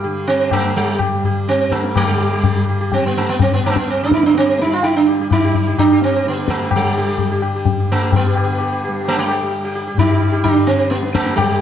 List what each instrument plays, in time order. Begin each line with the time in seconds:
Already playing: tanpura G2 G3
0.03 tanpura D3, sitar G4, tabla tin
0.27 sitar C4
0.51 sitar A3, tabla na, tabla ge
0.59 tanpura G3
0.76 sitar G3
0.99 sitar G4, tabla na, tabla ge
1.15 tanpura G3
1.24 sitar G4, tabla ge
1.48 sitar C4, tabla te
1.59 tabla te
1.67 tanpura G2
1.72 sitar A3, tabla ke
1.84 tabla te
1.96 tanpura D3, sitar G3 G4, tabla na, tabla ge
2.09 sitar G4
2.20 sitar G4
2.33 sitar G4
2.44 sitar G4, tabla tin, tabla ge
2.51 tanpura G3
2.56 sitar G4
2.69 sitar G4
2.80 sitar G4
2.92 sitar C4, tabla tin, tabla ge
3.04 tanpura G3, sitar B3
3.17 sitar A3
3.29 sitar B3
3.39 sitar C4, tabla tin, tabla ge
3.53 sitar B3
3.58 tanpura G2
3.64 sitar A3, tabla na
3.76 sitar B3, tabla ke
3.88 sitar C4, tabla te
4.00 sitar D4, tabla te
4.11 tanpura D3, sitar D#4, tabla ke
4.23 sitar D4, tabla te
4.35 sitar C4, tabla te
4.48 sitar G4
4.59 sitar D#4, tabla te
4.65 tanpura G3
4.73 sitar F4
4.83 sitar D#4, tabla tin
4.96 sitar D4
5.08 sitar G4, tabla na
5.19 tanpura G3, sitar G4
5.31 sitar D#4, tabla na, tabla ge
5.44 sitar G4
5.54 sitar G4, tabla ge
5.67 sitar G4
5.74 tanpura G2
5.79 sitar D4, tabla na, tabla ge
5.92 sitar G4
6.02 sitar C4, tabla te
6.16 sitar G4
6.25 tanpura D3, sitar B3, tabla te
6.37 sitar G4, tabla te
6.48 sitar A3, tabla ke
6.59 sitar G4, tabla te
6.71 tabla na, tabla ge
6.76 sitar G3, tanpura G3
6.86 sitar G4
6.98 sitar G4
7.08 sitar G4
7.18 tabla tin, tabla ge
7.31 tanpura G3, sitar G4
7.42 sitar G4, tabla na
7.56 sitar G4
7.65 tabla tin, tabla ge
7.80 sitar G4
7.85 tanpura G2
7.92 sitar A3
8.03 sitar G4
8.12 sitar B3, tabla tin, tabla ge
8.26 sitar G4
8.35 tanpura D3, sitar G4, tabla na
8.48 sitar G4
8.59 sitar G4, tabla na
8.72 sitar G4
8.84 sitar G4
8.88 tanpura G3
9.06 sitar A3, tabla na
9.18 sitar G3
9.29 sitar G4, tabla na
9.41 tanpura G3
9.52 tabla tin
9.64 sitar G4
9.75 sitar G4
9.87 sitar G4
9.94 tanpura G2
9.98 sitar D#4, tabla na, tabla ge
10.10 sitar G4
10.20 sitar G4
10.32 sitar G4
10.44 tanpura D3, sitar D4, tabla na, tabla ge
10.67 sitar C4, tabla te
10.78 sitar G4
10.90 sitar B3, tabla te
10.99 tanpura G3, tabla te
11.14 sitar A3, tabla ke
11.25 sitar G4, tabla te
11.36 sitar G3, tabla na, tabla ge
11.48 tanpura G3, sitar G4